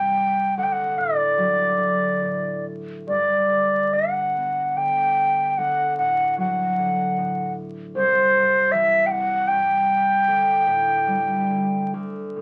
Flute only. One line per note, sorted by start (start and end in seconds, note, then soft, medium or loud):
0.00 0.57 G5 medium
0.58 0.65 F#5 medium
0.63 0.74 G5 medium
0.72 1.00 F#5 medium
0.98 2.65 D5 medium
3.08 3.95 D5 medium
3.94 4.78 F#5 medium
4.77 5.50 G5 medium
5.50 5.59 G5 medium
5.58 5.97 F#5 medium
5.98 6.36 F#5 medium
6.40 7.54 F#5 medium
7.96 8.73 C5 medium
8.72 9.08 E5 medium
9.06 9.12 G5 medium
9.11 9.49 F#5 medium
9.48 11.92 G5 medium